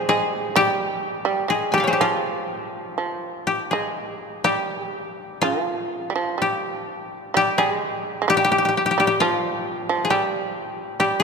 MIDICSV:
0, 0, Header, 1, 3, 480
1, 0, Start_track
1, 0, Tempo, 943396
1, 33, Time_signature, 4, 2, 24, 8
1, 994, Tempo, 986842
1, 2434, Tempo, 963082
1, 3874, Tempo, 911854
1, 5678, End_track
2, 0, Start_track
2, 0, Title_t, "Koto"
2, 0, Program_c, 0, 107
2, 0, Note_on_c, 0, 65, 66
2, 0, Note_on_c, 0, 72, 53
2, 45, Note_on_c, 0, 68, 68
2, 287, Note_on_c, 0, 67, 68
2, 317, Note_off_c, 0, 68, 0
2, 562, Note_off_c, 0, 65, 0
2, 638, Note_off_c, 0, 72, 0
2, 763, Note_on_c, 0, 68, 55
2, 793, Note_off_c, 0, 67, 0
2, 874, Note_on_c, 0, 80, 26
2, 884, Note_on_c, 0, 67, 54
2, 904, Note_on_c, 0, 79, 26
2, 914, Note_off_c, 0, 68, 0
2, 915, Note_on_c, 0, 77, 28
2, 935, Note_on_c, 0, 73, 32
2, 953, Note_on_c, 0, 68, 32
2, 956, Note_on_c, 0, 72, 33
2, 979, Note_off_c, 0, 67, 0
2, 981, Note_on_c, 0, 67, 40
2, 984, Note_off_c, 0, 79, 0
2, 1010, Note_off_c, 0, 80, 0
2, 1021, Note_on_c, 0, 65, 56
2, 1620, Note_off_c, 0, 77, 0
2, 1729, Note_off_c, 0, 67, 0
2, 1731, Note_on_c, 0, 67, 47
2, 1743, Note_off_c, 0, 73, 0
2, 1760, Note_off_c, 0, 68, 0
2, 1792, Note_off_c, 0, 72, 0
2, 1848, Note_on_c, 0, 68, 45
2, 1877, Note_off_c, 0, 67, 0
2, 2042, Note_off_c, 0, 68, 0
2, 2042, Note_on_c, 0, 67, 45
2, 2085, Note_off_c, 0, 65, 0
2, 2205, Note_off_c, 0, 67, 0
2, 2205, Note_on_c, 0, 67, 63
2, 2684, Note_on_c, 0, 65, 57
2, 3181, Note_off_c, 0, 67, 0
2, 3183, Note_on_c, 0, 67, 51
2, 3654, Note_off_c, 0, 67, 0
2, 3656, Note_on_c, 0, 67, 67
2, 3763, Note_on_c, 0, 68, 64
2, 3773, Note_off_c, 0, 65, 0
2, 3793, Note_off_c, 0, 67, 0
2, 4134, Note_on_c, 0, 67, 68
2, 4166, Note_off_c, 0, 68, 0
2, 4170, Note_off_c, 0, 67, 0
2, 4172, Note_on_c, 0, 67, 52
2, 4210, Note_off_c, 0, 67, 0
2, 4212, Note_on_c, 0, 67, 55
2, 4247, Note_off_c, 0, 67, 0
2, 4249, Note_on_c, 0, 67, 49
2, 4282, Note_off_c, 0, 67, 0
2, 4284, Note_on_c, 0, 67, 40
2, 4318, Note_off_c, 0, 67, 0
2, 4320, Note_on_c, 0, 67, 37
2, 4337, Note_off_c, 0, 67, 0
2, 4339, Note_on_c, 0, 67, 40
2, 4383, Note_off_c, 0, 67, 0
2, 4385, Note_on_c, 0, 67, 42
2, 4427, Note_off_c, 0, 67, 0
2, 4429, Note_on_c, 0, 67, 49
2, 4454, Note_off_c, 0, 67, 0
2, 4456, Note_on_c, 0, 67, 44
2, 4501, Note_off_c, 0, 67, 0
2, 4503, Note_on_c, 0, 67, 55
2, 4540, Note_off_c, 0, 67, 0
2, 4542, Note_on_c, 0, 67, 47
2, 4611, Note_on_c, 0, 65, 59
2, 5055, Note_on_c, 0, 68, 44
2, 5083, Note_off_c, 0, 67, 0
2, 5085, Note_on_c, 0, 67, 54
2, 5116, Note_off_c, 0, 68, 0
2, 5554, Note_off_c, 0, 67, 0
2, 5556, Note_on_c, 0, 67, 54
2, 5661, Note_on_c, 0, 68, 58
2, 5678, Note_off_c, 0, 65, 0
2, 5678, Note_off_c, 0, 67, 0
2, 5678, Note_off_c, 0, 68, 0
2, 5678, End_track
3, 0, Start_track
3, 0, Title_t, "Shamisen"
3, 0, Program_c, 1, 106
3, 47, Note_on_c, 1, 56, 54
3, 259, Note_off_c, 1, 56, 0
3, 283, Note_on_c, 1, 55, 61
3, 612, Note_off_c, 1, 55, 0
3, 636, Note_on_c, 1, 55, 53
3, 744, Note_off_c, 1, 55, 0
3, 755, Note_on_c, 1, 56, 49
3, 865, Note_off_c, 1, 56, 0
3, 883, Note_on_c, 1, 55, 50
3, 959, Note_off_c, 1, 55, 0
3, 970, Note_on_c, 1, 55, 34
3, 1000, Note_off_c, 1, 55, 0
3, 1020, Note_on_c, 1, 53, 55
3, 1471, Note_off_c, 1, 53, 0
3, 1492, Note_on_c, 1, 53, 40
3, 1827, Note_off_c, 1, 53, 0
3, 1858, Note_on_c, 1, 56, 42
3, 2188, Note_off_c, 1, 56, 0
3, 2206, Note_on_c, 1, 55, 54
3, 2661, Note_off_c, 1, 55, 0
3, 2689, Note_on_c, 1, 53, 41
3, 2997, Note_off_c, 1, 53, 0
3, 3025, Note_on_c, 1, 55, 35
3, 3048, Note_off_c, 1, 55, 0
3, 3053, Note_on_c, 1, 53, 43
3, 3159, Note_off_c, 1, 53, 0
3, 3164, Note_on_c, 1, 55, 40
3, 3385, Note_off_c, 1, 55, 0
3, 3644, Note_on_c, 1, 55, 51
3, 3751, Note_off_c, 1, 55, 0
3, 3764, Note_on_c, 1, 55, 59
3, 3834, Note_off_c, 1, 55, 0
3, 3834, Note_on_c, 1, 56, 59
3, 4070, Note_off_c, 1, 56, 0
3, 4092, Note_on_c, 1, 56, 49
3, 4122, Note_off_c, 1, 56, 0
3, 4124, Note_on_c, 1, 55, 58
3, 4462, Note_off_c, 1, 55, 0
3, 4492, Note_on_c, 1, 55, 50
3, 4598, Note_off_c, 1, 55, 0
3, 4617, Note_on_c, 1, 53, 56
3, 4949, Note_off_c, 1, 53, 0
3, 4975, Note_on_c, 1, 53, 51
3, 5080, Note_off_c, 1, 53, 0
3, 5086, Note_on_c, 1, 55, 48
3, 5305, Note_off_c, 1, 55, 0
3, 5555, Note_on_c, 1, 55, 42
3, 5666, Note_off_c, 1, 55, 0
3, 5678, End_track
0, 0, End_of_file